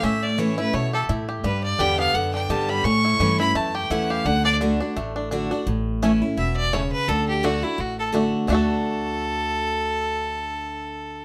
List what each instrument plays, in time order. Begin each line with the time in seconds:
Already playing: five-string banjo E4 G4
0.03 upright bass A2, steel-string acoustic guitar A2, five-string banjo C#4, fiddle E5
0.22 fiddle D5
0.38 steel-string acoustic guitar E3 A3 C#4 E4, five-string banjo E3, fiddle C#5
0.58 steel-string acoustic guitar C#4 E4, five-string banjo E4, fiddle B4
0.73 steel-string acoustic guitar B2, upright bass B2, five-string banjo A3, fiddle C#5
0.93 five-string banjo G4, fiddle A4
1.09 upright bass A2, steel-string acoustic guitar A2, five-string banjo E4
1.29 five-string banjo G4
1.44 upright bass G2, steel-string acoustic guitar G2, five-string banjo G3, fiddle B4
1.63 fiddle D5
1.79 upright bass E2, steel-string acoustic guitar D3 G3 B3 G4, five-string banjo D4, fiddle G5
1.99 five-string banjo B3, fiddle F5
2.14 upright bass F#2, steel-string acoustic guitar D3, fiddle F#5
2.34 five-string banjo D4, fiddle G5
2.49 upright bass G2, steel-string acoustic guitar D3 G3 B3 G4, five-string banjo G4, fiddle A5
2.69 five-string banjo G3, fiddle B5
2.84 upright bass A2, steel-string acoustic guitar A2, five-string banjo C#4, fiddle C#6
3.05 five-string banjo E4
3.19 upright bass G2, steel-string acoustic guitar E3 A3 C#4 E4, five-string banjo E3
3.39 steel-string acoustic guitar C#4 E4, five-string banjo E4, fiddle B5
3.54 steel-string acoustic guitar E2, upright bass F#2, five-string banjo A3, fiddle A5
3.75 five-string banjo G4, fiddle G5
3.90 upright bass E2, steel-string acoustic guitar E3 A3 C#4 E4, five-string banjo E4, fiddle F#5
4.10 five-string banjo G4, fiddle F5
4.25 upright bass D2, steel-string acoustic guitar D3, five-string banjo D4, fiddle F#5
4.44 five-string banjo D4, fiddle D5
4.61 five-string banjo D3, steel-string acoustic guitar D3 A3 D4 F#4
4.80 five-string banjo D4, steel-string acoustic guitar D4 F#4
4.96 upright bass A1, steel-string acoustic guitar A2, five-string banjo A3
5.16 five-string banjo D4
5.31 steel-string acoustic guitar D3 A3 D4 F#4, five-string banjo D4
5.51 five-string banjo D4, steel-string acoustic guitar D4 F#4
5.67 upright bass A1, steel-string acoustic guitar A2
6.02 steel-string acoustic guitar E3 A3 C#4 E4, five-string banjo A3 C#4 E4
6.22 steel-string acoustic guitar C#4 E4
6.37 upright bass E1, steel-string acoustic guitar B2, fiddle E5
6.56 fiddle D5
6.73 steel-string acoustic guitar C#3, five-string banjo A3 C#4 E4, fiddle C#5
6.92 fiddle B4
7.08 upright bass D2, steel-string acoustic guitar D3, fiddle A4
7.28 fiddle G4
7.43 steel-string acoustic guitar D3 A3 D4 F#4, five-string banjo A3 D4, fiddle F#4
7.62 steel-string acoustic guitar D4 F#4, fiddle E4
7.78 upright bass A1, steel-string acoustic guitar A2, fiddle F#4
7.99 fiddle A4
8.12 steel-string acoustic guitar D3 A3 D4 F#4, five-string banjo A3 D4
8.47 upright bass D2, steel-string acoustic guitar D3 A3 D4 F#4, five-string banjo A3 D4, fiddle A4
8.52 five-string banjo F#4 A4